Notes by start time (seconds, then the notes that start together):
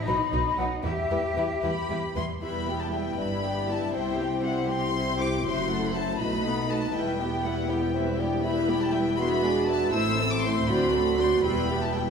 0.06 B1 F#3 D#4 B4 B5
0.32 B1 F#3 D#4 B4
0.57 B1 F#3 D#4 B4 F#5
0.84 E2 G3 E4 G4 B4 E5
1.10 E2 G3 E4 B4
1.36 E2 G3 E4 B4
1.62 E2 G3 E4 B4 B5
1.89 E2 G3 E4 B4
2.15 E2 G3 E4 B4 C6
2.42 E1 E2 G3 B3 E4 G4 B4 E5 B5
2.67 B3 G4 G5
2.81 A5
2.93 G3 E4 B4 E5 G5
3.18 G1 G2 G3 D4 E4 B4 E5 B5
3.44 B3 G4 G5
3.69 G3 E4 B4 E5 A5
3.94 C2 C3 G3 C4 E4 C5 E5 G5
4.20 C4 G4 G5
4.44 G3 E4 C5 E5 F#5
4.69 C4 G4 G5 C6
4.95 G3 E4 C5 E5
5.20 C4 G4 G5 D6
5.45 F#1 F#2 F#3 A3 E4 F#4 C5 E5 C6
5.70 A3 E4 A4 F#5
5.84 B5
5.95 F#3 F#4 C5 E5 A5
6.20 B1 B2 A3 D#4 F#4 B4 D#5 B5
6.45 B3 D#4 A4 F#5
6.69 A3 F#4 B4 D#5 A5
6.95 E1 E2 G3 E4 B4 E5 G5
7.20 B3 G4 G5
7.44 G3 E4 B4 E5 F#5
7.69 B3 G4 G5
7.94 G3 C4 E4 B4 E5
8.19 B3 D4 G4 G5
8.44 G3 E4 B4 E5 B5
8.69 B3 G4 G5
8.82 A5
8.93 G3 E4 B4 E5 G5
9.18 G#3 B3 D4 E4 F#4 B4 E5 B5
9.24 C6
9.32 B5
9.43 D4 G#4 D5
9.68 B3 E4 B4 E5 A5
9.93 A1 A2 A3 C4 E4 C5 E5 E6
10.19 C4 A4 C5
10.32 D6
10.44 A3 E4 C5 E5 C6
10.68 D2 F#3 D4 F#4 C5 D5 B5
10.94 C4 D4 A4 C5
11.19 D4 F#4 C5 D5 C6
11.44 E1 E2 G3 B3 E4 G4 B4 G5 B5
11.70 B3 G4 E5
11.84 A5
11.96 G3 E4 B4 G5